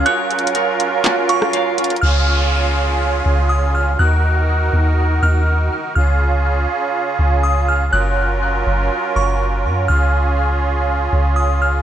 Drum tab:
HH |x-----------x---x---x---x-----------x-----------x-----------x-----------x-----------x--x--x--x--|------------------------------------------------------------------------------------------------|------------------------------------------------------------------------------------------------|------------------------------------------------------------------------------------------------|
CP |------------------------------------------------x-----------------------------------------------|------------------------------------------------------------------------------------------------|------------------------------------------------------------------------------------------------|------------------------------------------------------------------------------------------------|
SD |------------------------------------------------------------------r-----------------------------|------------------------------------------------------------------------------------------------|------------------------------------------------------------------------------------------------|------------------------------------------------------------------------------------------------|

HH |------------------------------------------------------------------------------------------------|------------------------------------------------------------------------------------------------|
CP |------------------------------------------------------------------------------------------------|------------------------------------------------------------------------------------------------|
SD |------------------------------------------------------------------------------------------------|------------------------------------------------------------------------------------------------|